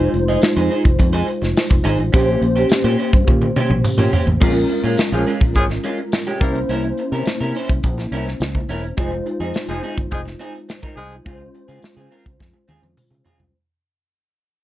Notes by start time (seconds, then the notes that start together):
Already playing: G#3 D#4 F4 G#4 C5
0.00 closed hi-hat
0.13 F1, muted clean electric guitar stroke, closed hi-hat
0.28 D#4 G#4 D#5, closed hi-hat
0.42 muted clean electric guitar stroke, muted fingered electric bass stroke, snare, tambourine
0.56 F2 D#4 G#4 C5, closed hi-hat
0.71 D#4 G#4 C5, closed hi-hat
0.85 F1, muted clean electric guitar stroke, kick, closed hi-hat
0.99 F2, muted clean electric guitar stroke, kick, closed hi-hat
1.13 D#4 G#4 C5, closed hi-hat
1.28 muted clean electric guitar stroke, closed hi-hat
1.42 F1, muted clean electric guitar stroke, snare, closed hi-hat
1.57 snare, tambourine
1.70 F1, muted clean electric guitar stroke, kick
1.84 G#1 D#4 G#4 C5, closed hi-hat
1.98 A1, muted clean electric guitar stroke, closed hi-hat
2.12 A#1 A#3 C#4 G4 C5, kick, closed hi-hat
2.41 A#1, muted clean electric guitar stroke, closed hi-hat
2.56 C#4 G4 C5, closed hi-hat
2.69 muted fingered electric bass stroke, muted clean electric guitar stroke, snare, tambourine
2.84 A#2 C#4 G4 C5, closed hi-hat
2.99 C#4 G4 C5, closed hi-hat
3.13 G2, muted clean electric guitar stroke, kick, closed hi-hat
3.27 A#2, muted clean electric guitar stroke, kick, high tom
3.42 muted clean electric guitar stroke, high tom
3.56 C#4 G4 C5, mid tom
3.69 A#1, muted clean electric guitar stroke, mid tom
3.84 muted clean electric guitar stroke, mid tom, tambourine
3.98 A#2 C#4 G4 C5, mid tom
4.12 C#4 G4 C5, floor tom
4.26 A1, muted clean electric guitar stroke, floor tom
4.40 A#1 G#3 C4 C#4 F4 A#4, kick, crash
4.47 C#4
4.55 muted clean electric guitar stroke, closed hi-hat
4.69 muted clean electric guitar stroke, closed hi-hat
4.84 A#2 G#3 C#4 F4, closed hi-hat
4.97 muted clean electric guitar stroke, snare, tambourine
5.12 A#1 F3 G#3 C#4 F4 G#4, closed hi-hat
5.27 G#3 C#4 F4, closed hi-hat
5.41 A#1, muted clean electric guitar stroke, kick, closed hi-hat
5.55 G#1 F3 G#3 C#4 G#4, muted clean electric guitar stroke, kick, closed hi-hat
5.69 muted clean electric guitar stroke, snare, closed hi-hat
5.84 G#3 C#4 F4, closed hi-hat
5.98 muted clean electric guitar stroke, closed hi-hat
6.12 muted clean electric guitar stroke, snare, tambourine
6.26 G#3 C#4 G4, closed hi-hat
6.40 C2 G3 A#3 C#4 E4 A#4 C5, kick, closed hi-hat
6.55 muted clean electric guitar stroke, closed hi-hat
6.69 C2 C#4 E4 A#4, closed hi-hat
6.84 muted clean electric guitar stroke, closed hi-hat
6.98 muted clean electric guitar stroke, closed hi-hat
7.12 C3 C#4 E4 A#4, closed hi-hat
7.25 muted fingered electric bass stroke, muted clean electric guitar stroke, snare, tambourine
7.41 C3 C#4 E4 A#4, closed hi-hat
7.55 C#4 E4 C5, closed hi-hat
7.69 C2, muted clean electric guitar stroke, kick, closed hi-hat
7.83 A#1, muted clean electric guitar stroke, kick, closed hi-hat
7.98 muted clean electric guitar stroke, snare, closed hi-hat
8.11 C2 C#4 E4 A#4, closed hi-hat
8.26 muted clean electric guitar stroke, snare, closed hi-hat
8.40 C#2, snare, tambourine
8.55 muted clean electric guitar stroke, kick, closed hi-hat
8.68 E1 C#4 E4 A#4, closed hi-hat
8.83 muted clean electric guitar stroke, closed hi-hat
8.97 F1 G#3 C4 D#4 F4 G#4 C5, kick, closed hi-hat
9.12 muted clean electric guitar stroke, closed hi-hat
9.26 muted clean electric guitar stroke, closed hi-hat
9.40 F2 C4 D#4 G#4, closed hi-hat
9.54 muted clean electric guitar stroke, snare, tambourine
9.68 F1 F3 G#3 C4 D#4 G#4
9.83 C4 D#4 G#4, closed hi-hat
9.97 G1, muted clean electric guitar stroke, kick, closed hi-hat
10.11 F1 F3 G#3 D#4 G#4, muted clean electric guitar stroke, kick, closed hi-hat
10.26 muted clean electric guitar stroke, snare
10.40 C4 D#4 G#4, closed hi-hat
10.54 closed hi-hat
10.69 muted clean electric guitar stroke, snare, tambourine
10.83 C4 D#4 A#4, kick, closed hi-hat
10.96 C2 F3 G#3 D#4 G#4, muted clean electric guitar stroke, closed hi-hat
11.11 muted clean electric guitar stroke, closed hi-hat
11.25 C#2 G#3 C4 C#4 F4 G#4 C5, kick, closed hi-hat
11.40 muted clean electric guitar stroke, closed hi-hat
11.54 muted clean electric guitar stroke, closed hi-hat
11.68 C#3 C4 F4 G#4, closed hi-hat
11.82 muted fingered electric bass stroke, muted clean electric guitar stroke, snare, tambourine
11.97 C#3 C4 F4 G#4, closed hi-hat
12.11 C4 F4 A#4, open hi-hat
12.25 C#2, muted clean electric guitar stroke, kick, closed hi-hat
12.40 F2, muted clean electric guitar stroke, kick, snare
12.54 muted clean electric guitar stroke
12.68 D#2 C4 F4 G#4, high tom
12.82 F2, muted clean electric guitar stroke, high tom
12.97 mid tom, tambourine
13.11 C#3, muted clean electric guitar stroke
13.25 C4 F4 G#4, floor tom
13.39 C2, muted clean electric guitar stroke, floor tom